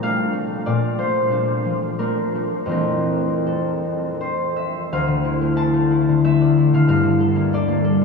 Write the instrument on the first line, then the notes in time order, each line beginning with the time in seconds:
harp
Already playing: A#2 F3 D5 A#5
0.03 A3 D4 F5
0.33 A3
0.66 A#2 D5
0.98 A3 C5
1.30 A3 D4
1.65 F3
1.99 A3 D4 A#4
2.35 A3
2.66 F2 E3 A3 C4
2.71 A#4
3.47 A4
4.21 C5
4.56 E5
4.92 D2 F5
5.08 D3
5.25 E4
5.41 A3
5.56 E4 A5
5.74 A3
5.91 E4
6.09 D3
6.24 A3 E5
6.41 D4
6.57 E4
6.74 D3 F5
6.88 G2 F5
7.03 D3
7.20 A4
7.36 A#3
7.53 A4 D5
7.68 A#3
7.84 A4
8.01 D3